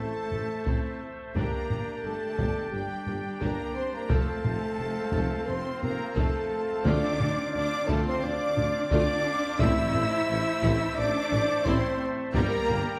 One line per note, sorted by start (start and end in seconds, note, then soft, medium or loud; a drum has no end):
0.00 0.12 A1 medium
0.00 0.99 A3 medium
0.00 1.32 A3 medium
0.00 1.02 A4 loud
0.00 1.32 A4 medium
0.00 1.36 C5 medium
0.00 1.35 E5 medium
0.00 0.99 A5 medium
0.00 1.00 A5 medium
0.31 0.40 A1 medium
0.31 0.46 A1 medium
0.31 0.40 E3 medium
0.31 0.40 A3 medium
0.31 taiko low-mid soft
0.66 0.80 A1 medium
0.66 0.75 A1 medium
0.66 0.98 C4 medium
0.66 0.99 E4 medium
0.66 taiko medium
1.34 1.48 G1 medium
1.34 1.43 G1 medium
1.34 2.00 A#3 medium
1.34 4.10 D4 medium
1.34 1.68 D4 medium
1.34 4.11 G4 medium
1.34 1.68 G4 medium
1.34 2.01 A#4 loud
1.34 4.11 D5 medium
1.34 4.11 G5 medium
1.34 2.00 A#5 medium
1.34 2.01 A#5 medium
1.34 taiko medium
1.69 1.83 G1 medium
1.69 1.78 G1 medium
1.69 1.78 A#3 medium
1.69 1.78 D4 soft
1.69 taiko low-mid medium
2.04 2.18 G1 medium
2.04 2.12 G1 medium
2.04 2.12 G3 medium
2.04 2.73 A3 medium
2.04 2.12 D4 medium
2.04 2.73 A4 loud
2.04 2.73 A5 medium
2.04 2.72 A5 medium
2.38 2.52 G1 medium
2.38 2.47 G1 medium
2.38 2.71 D4 medium
2.38 2.70 G4 medium
2.38 taiko medium
2.72 2.81 G1 medium
2.72 2.87 G1 medium
2.72 3.40 G3 medium
2.72 2.82 A#3 medium
2.72 2.81 D4 medium
2.72 3.40 G4 loud
2.72 3.41 G5 medium
3.07 3.21 G1 medium
3.07 3.15 G1 medium
3.07 3.16 G3 medium
3.07 3.16 A#3 medium
3.07 taiko low-mid medium
3.41 3.55 G1 medium
3.41 3.50 G1 medium
3.41 3.76 A#3 medium
3.41 3.74 D4 medium
3.41 3.74 G4 medium
3.41 3.76 A#4 loud
3.41 3.77 A#5 medium
3.41 taiko medium
3.75 3.94 C4 medium
3.75 3.93 C5 loud
3.75 3.93 C6 medium
3.75 3.94 C6 medium
3.93 4.11 A#3 medium
3.93 4.11 A#4 loud
3.93 4.10 A#5 medium
3.93 4.11 A#5 medium
4.09 4.24 F1 medium
4.09 4.19 F1 medium
4.09 4.42 A3 loud
4.09 5.46 A3 loud
4.09 9.60 C4 medium
4.09 9.60 F4 medium
4.09 4.42 A4 medium
4.09 5.48 A4 loud
4.09 6.85 C5 medium
4.09 9.60 F5 medium
4.09 5.48 A5 medium
4.09 5.48 A5 loud
4.09 taiko loud
4.44 4.58 F1 medium
4.44 4.53 F1 medium
4.44 4.52 F3 medium
4.44 4.53 F4 medium
4.44 taiko low-mid medium
4.79 4.93 F1 medium
4.79 4.88 F1 medium
4.79 4.87 C3 medium
4.79 4.87 C4 medium
5.13 5.27 F1 loud
5.13 5.22 F1 medium
5.13 5.45 A3 medium
5.13 5.45 A4 medium
5.13 taiko loud
5.47 5.56 F1 medium
5.47 5.62 F1 medium
5.47 5.56 F3 medium
5.47 5.83 C4 medium
5.47 5.56 F4 medium
5.47 5.82 C5 loud
5.47 5.82 C6 medium
5.47 5.83 C6 loud
5.82 5.96 F1 medium
5.82 5.90 F1 medium
5.82 5.90 C3 medium
5.82 6.18 A#3 medium
5.82 5.90 C4 medium
5.82 6.17 A#4 loud
5.82 6.16 A#5 medium
5.82 6.17 A#5 medium
5.82 taiko low-mid medium
6.16 6.24 F1 medium
6.16 6.30 F1 loud
6.16 6.86 A3 medium
6.16 6.49 A3 loud
6.16 6.86 A4 loud
6.16 6.49 A4 loud
6.16 6.85 A5 medium
6.16 taiko medium
6.85 6.99 D2 loud
6.85 6.94 D2 loud
6.85 7.18 A3 loud
6.85 7.54 D4 loud
6.85 7.18 F4 loud
6.85 9.60 D5 loud
6.85 7.52 D5 loud
6.85 7.53 D6 loud
6.85 taiko loud
7.20 7.34 D2 medium
7.20 7.29 D2 medium
7.20 7.28 F3 medium
7.20 7.28 D4 medium
7.20 taiko low-mid medium
7.53 7.69 D2 medium
7.53 7.63 D2 medium
7.53 7.64 D3 medium
7.53 7.63 A3 medium
7.53 7.89 D4 loud
7.53 7.87 D5 loud
7.53 7.88 D6 loud
7.88 8.02 D2 loud
7.88 7.98 D2 loud
7.88 8.06 A3 loud
7.88 8.21 A3 loud
7.88 8.21 F4 loud
7.88 8.06 A4 loud
7.88 8.06 A5 loud
7.88 taiko loud
8.06 8.23 C4 loud
8.06 8.24 C5 loud
8.06 8.23 C6 loud
8.23 8.37 D2 medium
8.23 8.33 D2 medium
8.23 8.32 F3 medium
8.23 8.32 D4 medium
8.23 8.91 D4 loud
8.23 8.91 D5 loud
8.23 8.90 D6 loud
8.23 8.91 D6 loud
8.57 8.71 D2 medium
8.57 8.67 D2 medium
8.57 8.66 D3 medium
8.57 8.66 A3 medium
8.57 taiko low-mid medium
8.91 8.99 D2 loud
8.91 9.05 D2 loud
8.91 9.24 A3 loud
8.91 9.60 D4 loud
8.91 9.24 F4 loud
8.91 9.59 D5 loud
8.91 9.59 D6 loud
8.91 9.60 D6 loud
8.91 taiko medium
9.59 9.74 A1 loud
9.59 9.70 A1 loud
9.59 10.60 A2 loud
9.59 12.32 A3 loud
9.59 9.93 C4 loud
9.59 10.98 E4 loud
9.59 9.93 E4 loud
9.59 12.32 A4 loud
9.59 12.36 C5 loud
9.59 10.97 E5 loud
9.59 12.36 E5 loud
9.59 10.98 E6 loud
9.59 10.95 E6 loud
9.59 taiko loud
9.94 10.09 A1 medium
9.94 10.04 A1 medium
9.94 10.04 A3 medium
9.94 10.04 C4 medium
9.94 taiko low-mid medium
10.29 10.43 A1 medium
10.29 10.38 A1 medium
10.29 10.37 E3 medium
10.29 10.37 A3 medium
10.63 10.78 A1 loud
10.63 10.72 A1 loud
10.63 10.95 C4 loud
10.63 10.96 E4 loud
10.63 taiko loud
10.96 11.12 A1 medium
10.96 11.06 A1 medium
10.96 11.05 A3 medium
10.96 11.06 C4 medium
10.96 11.67 D4 loud
10.96 11.66 D5 loud
10.96 11.65 D6 loud
10.96 11.67 D6 loud
11.32 11.46 A1 medium
11.32 11.40 A1 medium
11.32 11.40 E3 medium
11.32 11.40 A3 loud
11.32 taiko low-mid medium
11.65 11.80 A1 loud
11.65 11.75 A1 loud
11.65 11.99 C4 loud
11.65 12.01 C4 loud
11.65 11.99 E4 loud
11.65 12.01 C5 loud
11.65 12.01 C6 loud
11.65 12.02 C6 loud
11.65 taiko medium
12.34 12.49 G1 loud
12.34 12.44 G1 loud
12.34 12.99 G3 loud
12.34 12.68 G3 loud
12.34 12.99 A#3 loud
12.34 12.99 G4 loud
12.34 12.67 G4 loud
12.34 12.99 A#4 loud
12.34 12.99 D5 loud
12.34 12.99 G5 loud
12.34 12.99 A#5 loud
12.34 taiko loud
12.70 12.84 G1 medium
12.70 12.78 G1 medium
12.70 12.78 D3 medium
12.70 12.78 D4 medium
12.70 taiko low-mid medium